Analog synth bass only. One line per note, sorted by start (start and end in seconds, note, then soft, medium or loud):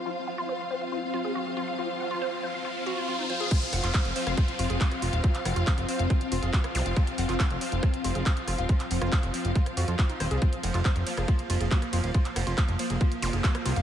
3.73 3.80 F1 loud
3.84 3.91 F1 medium
4.05 4.13 F1 medium
4.27 4.34 F1 medium
4.59 4.67 F1 loud
4.70 4.77 F1 medium
5.02 5.10 F1 medium
5.13 5.21 D#1 medium
5.45 5.53 F1 loud
5.56 5.64 F1 medium
5.78 5.85 F1 medium
5.99 6.07 F1 medium
6.32 6.39 F1 medium
6.43 6.50 F1 medium
6.75 6.82 C2 medium
6.86 6.93 F1 medium
7.18 7.26 F1 medium
7.29 7.36 F1 medium
7.50 7.58 F1 medium
7.72 7.80 F1 medium
8.04 8.12 F1 medium
8.15 8.23 F1 medium
8.48 8.55 F1 loud
8.58 8.66 D#1 medium
8.91 8.98 F1 medium
9.02 9.09 F1 medium
9.23 9.31 F1 medium
9.45 9.52 F1 medium
9.77 9.85 F2 loud
9.88 9.95 F2 medium
10.20 10.28 D#1 loud
10.31 10.39 C2 medium
10.63 10.71 F1 loud
10.74 10.82 F1 medium
10.96 11.03 F1 medium
11.17 11.25 F1 medium
11.50 11.57 F1 loud
11.61 11.68 F1 medium
11.93 12.00 F1 loud
12.04 12.11 D#1 medium
12.36 12.44 F1 loud
12.47 12.54 F1 medium
12.68 12.76 F1 medium
12.90 12.98 F1 medium
13.22 13.30 F1 loud
13.33 13.41 F1 medium
13.66 13.73 C2 loud
13.76 13.82 F1 medium